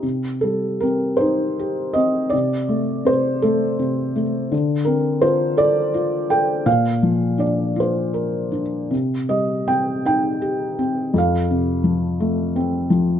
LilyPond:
<<
  \new Staff \with { instrumentName = "Felt piano" } { \time 6/8 \key c \dorian \tempo 4. = 54 r8 a'8 bes'8 c''4 ees''8 | d''4 c''8 a'4 r8 | r8 bes'8 c''8 d''4 g''8 | f''4 d''8 c''4 r8 |
r8 ees''8 g''8 g''4. | f''2 r4 | }
  \new Staff \with { instrumentName = "Felt piano" } { \time 6/8 \key c \dorian c8 g8 c'8 ees'8 g'8 c'8 | c8 a8 c8 a8 c8 a8 | d8 c'8 f'8 a'8 f'8 a'8 | bes,8 f8 d'8 f'8 bes'8 d'8 |
c8 g8 c'8 ees'8 g'8 c'8 | f,8 c8 f8 a8 c'8 f8 | }
>>